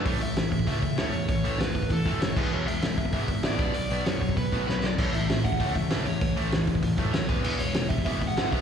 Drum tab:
CC |----------------|--------------x-|----------------|----------------|
HH |o-o-o-o-o-o-o-o-|o-o-o-o-o-o-o---|--o-o-o-o-o-o-o-|o-o-o-o-o-o-----|
SD |----o-------o---|----o-------o---|----o-------o---|----o-------o-o-|
BD |o-----ooo-o-----|o-----ooo-o---o-|------ooo-o---o-|------ooo-o-----|

CC |x---------------|----------------|x---------------|
HH |--o-o-o-o-o-o-o-|o-o-o-o-o-o-o-o-|--o-o-o-o-o-o-o-|
SD |----o-------o---|----o-------o---|----o-------o---|
BD |o-----ooo-o-----|o-----ooo-o---o-|------ooo-o---o-|